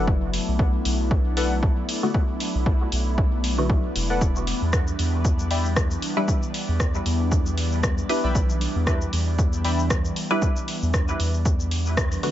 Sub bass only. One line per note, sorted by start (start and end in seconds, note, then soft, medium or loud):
0.00 0.39 F#1 loud
0.48 0.78 B1 loud
0.85 1.82 B1 loud
2.55 2.85 B1 medium
2.92 3.89 B1 loud
3.96 4.53 E1 medium
4.62 4.92 E2 loud
4.99 5.96 E2 loud
6.68 6.99 E2 loud
7.06 8.02 E2 loud
8.24 8.67 B1 loud
8.75 9.06 E2 loud
9.13 10.09 E2 loud
10.82 11.13 E2 medium
11.20 12.16 E2 loud